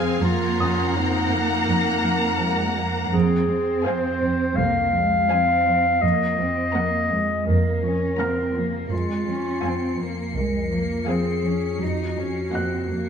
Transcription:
Already playing: F2 F3 C4 G#4 F5 G#5 F6 G#6 C7
0.23 F2 A#3 F4 F#5 A#5
0.60 F2 C#4 D#6
0.86 G6
0.96 F2 C4 D#4
1.32 F2 A#3
1.67 F2
1.76 C#7
2.04 F3
2.39 F3 G#3
2.76 F3 A#3
3.12 F2 C4 G#4
3.48 F2 C4
3.85 F2 C4 C5 F5 G#5
4.21 F2
4.56 C2 F2 A#3 F5
4.93 F3 G#3
5.30 F3 C4 F5 G#5
5.66 F3
6.02 F2 A#3 D#5
6.38 F2 C4
6.74 F2 A#3 F#5 A#5
7.11 F2 G#3
7.46 F2 A#3 A#4
7.83 F3 C#4
8.19 F3 A#3 C4 F#5 A#5 F6
8.56 F3 A#3
8.90 F2 G#3 F4 C7 C#7
9.27 F2 C#4
9.62 F2 C4 F5 G#5
10.00 F2 A#3
10.35 C2 F2 G#3 A#4
10.72 F3 A#3
11.06 F3 C4 G#4 F5 G#5
11.44 F3 C#4
11.80 F2 D#4 F#4
12.17 F2 C#4
12.52 F2 A#3 C4 D#5 F#5 F#6
12.90 F2 A#3

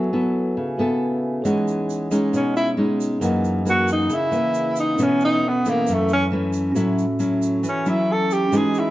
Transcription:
Already playing: F#3 F#4 A4 B4 E5 G#5
0.13 B3 E4 A4
0.57 C#3
0.77 B3 E4 F#4 A4 B4 E5 G#5
1.42 E3 G#3 C#4 D#4 G#4 C#5 D#5, shaker
1.46 F#5
1.68 shaker
1.90 shaker
2.11 G#3 C#4 D#4, shaker
2.33 B2 C#4, shaker
2.56 E4, shaker
2.77 G#3 C#4 D#4
3.01 shaker
3.20 F#2 E3 A#3 D#4 G#4 A#4 D#5, shaker
3.24 F#5
3.44 shaker
3.65 E3 A#3 D#4, shaker
3.70 F#4
3.88 D#4, shaker
4.09 C#3, shaker
4.14 E4
4.31 E3 A#3, shaker
4.54 shaker
4.76 D#4, shaker
4.96 B2 E3 A3 C#4 A4 B4, shaker
5.01 C#4 E5
5.20 shaker
5.25 D#4
5.48 B3
5.65 E3 A3 A#3 C#4, shaker
5.87 F#2, shaker
5.94 A3
6.09 shaker
6.13 C#4
6.32 E3 A3 C#4
6.53 shaker
6.72 A2 F#3 C#4 F#4, shaker
6.76 E4 A4 E5
6.98 shaker
7.19 F#3 C#4 E4, shaker
7.42 shaker
7.63 E3, shaker
7.68 C#4
7.86 F#3 C#4 E4, shaker
8.12 A4
8.31 G4, shaker
8.48 C#4 F#4
8.52 E3 G#3 C#4 D#4 G#4 D#5, shaker
8.56 G#4
8.74 shaker
8.79 E4

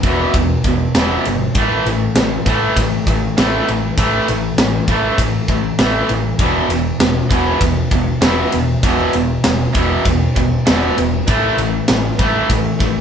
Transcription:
0.03 E1 E2 B2 E3, kick, ride
0.33 E2, kick, ride
0.38 E2 B2
0.64 E1 E2, kick, ride
0.68 B2
0.95 E1 E2 B2 E3, snare, ride
1.25 G1 E2 B2, ride
1.55 A1 A2 E3 A3, kick, ride
1.85 A1 A2 E3, ride
2.15 A1 A2, snare, ride
2.19 E3
2.46 A1 A2 E3 A3, kick, ride
2.76 A2 E3, kick, ride
3.06 A1 A2 E3, kick, ride
3.38 A1 A2 E3 A3, snare, ride
3.68 A1 A2 E3, ride
3.97 A1 A2 E3 A3, kick, ride
4.28 A1 A2 E3, ride
4.57 A1 A2 E3, snare, ride
4.88 A1 A2 E3 A3, kick, ride
5.18 A2 E3, kick, ride
5.48 A1 A2 E3, kick, ride
5.79 A1 A2 E3 A3, snare, ride
6.09 A1 A2 E3, ride
6.38 E1 E2 B2 E3, kick, ride
6.68 E1 E2 B2, ride
6.99 E1 E2 B2, snare, ride
7.31 E1 E2 B2 E3, kick, ride
7.61 E2 B2, kick, ride
7.91 E1 E2 B2, kick, ride
8.21 E1 E2 B2 E3, snare, ride
8.52 E1 E2 B2, ride
8.83 E1 E2 B2 E3, kick, ride
9.13 E1 E2 B2, ride
9.44 E1 E2 B2, snare, ride
9.75 E1 E2 B2 E3, kick, ride
10.05 E2 B2, kick, ride
10.36 E1 E2 B2, kick, ride
10.67 E1 E2 B2 E3, snare, ride
10.98 E1 E2 B2, ride
11.27 A1 A2 E3 A3, kick, ride
11.57 A1 A2 E3, ride
11.88 A1 A2 E3, snare, ride
12.19 A1 A2 E3 A3, kick, ride
12.50 A2 E3, kick, ride
12.80 A1 A2 E3, kick, ride

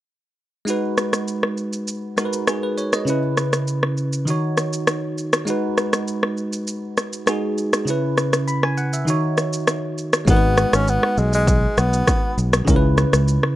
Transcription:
0.65 G#3 D#4 F#4, shaker
0.70 B4
0.98 cross-stick, shaker
1.13 cross-stick, shaker
1.28 shaker
1.43 cross-stick
1.57 shaker
1.73 shaker
1.88 shaker
2.16 G#3 D#4 F#4 A#4, cross-stick, shaker
2.25 B4
2.33 shaker
2.47 G#4, cross-stick, shaker
2.63 B4
2.78 C#5, shaker
2.93 D#5, cross-stick, shaker
3.05 C#3 C#4 E4, shaker
3.10 B4
3.37 cross-stick, shaker
3.53 cross-stick, shaker
3.68 shaker
3.83 cross-stick
3.97 shaker
4.13 shaker
4.25 D#3 D#4 F#4, shaker
4.30 C#5
4.57 cross-stick, shaker
4.73 shaker
4.87 cross-stick, shaker
5.18 shaker
5.33 cross-stick, shaker
5.45 G#3 D#4 F#4, shaker
5.50 B4
5.78 cross-stick, shaker
5.93 cross-stick, shaker
6.08 shaker
6.23 cross-stick
6.37 shaker
6.53 shaker
6.67 shaker
6.97 cross-stick, shaker
7.13 shaker
7.26 G#3 D#4 F#4 G#4, cross-stick, shaker
7.58 shaker
7.73 cross-stick, shaker
7.85 C#3 C#4 E4, shaker
7.90 B4
8.18 cross-stick, shaker
8.33 cross-stick, shaker
8.48 B5, shaker
8.63 G#5, cross-stick
8.77 F#5, shaker
8.93 E5, shaker
9.05 D#3 D#4 F#4, shaker
9.10 C#5
9.37 cross-stick, shaker
9.53 shaker
9.67 cross-stick, shaker
9.98 shaker
10.13 cross-stick, shaker
10.25 G#1 G#3 D#4 F#4, kick, shaker
10.29 B3 A#4
10.37 B4
10.57 cross-stick, shaker
10.73 G#1 C#4, cross-stick, shaker
10.88 B3, shaker
11.03 cross-stick
11.18 B1 G#3, shaker
11.33 G#3, shaker
11.47 kick, shaker
11.77 B1 B3, cross-stick, shaker
11.93 shaker
12.07 kick, cross-stick, shaker
12.37 B1, shaker
12.53 cross-stick, shaker
12.65 C#2 C#3 C#4 E4, kick, shaker
12.70 A#4
12.76 B4
12.98 cross-stick, shaker
13.13 C#2, cross-stick, shaker
13.28 shaker
13.43 cross-stick

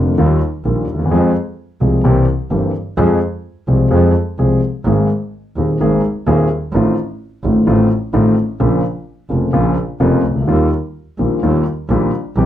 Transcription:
Already playing: F1 F2 D3 F3 A#3 F4
0.17 D#2 D#3 G3 A#3 F4
0.64 A#1 A#2 D#3 G3 A#3 F4
0.88 D#2
0.94 D2
0.99 D#2
1.05 E2
1.11 F2 F3 G#3 C4 G#4
1.81 C2 C3 F3 G#3 C4 G#4
2.04 C2 C3 E3 A#3 C4 G4
2.51 G1 G2 E3 A#3 C4 G4
2.97 F2 F3 G#3 C4 G#4
3.68 C2 C3 F3 G#3 C4 G#4
3.91 F2 F3 G#3 C4 G#4
4.38 C2 C3 F3 G#3 C4 G#4
4.85 G#1 G#2 D#3 A#3 C4 G#4
5.56 D#1 D#2 D#3 A#3 C4 G#4
5.80 G#1 G#2 D#3 A#3 C4 G#4
6.27 D#1 D#2 D#3 A#3 C4 G#4
6.73 A1 A2 D#3 A3 C4 F4
7.44 A1 A2 D#3 A3 C4 F4
7.66 A1 A2 D#3 A3 C4 F4
8.14 A1 A2 D#3 A3 C4 F4
8.60 A#1 A#2 C#3 F3 A#3 F4
9.30 F1 F2 C#3 F3 A#3 F4
9.53 A#1 A#2 C#3 F3 A#3 F4
10.00 F1 F2 C#3 F3 A#3 F4
10.25 C#2
10.31 C2
10.36 C#2
10.42 D2
10.47 D#2 D#3 G3 A#3 F4
11.18 A#1 A#2 D#3 G3 A#3 F4
11.42 D#2 D#3 G3 A#3 F4
11.89 A#1 A#2 D#3 G3 A#3 F4
12.36 C2 C3 E3 G3 C4 G4

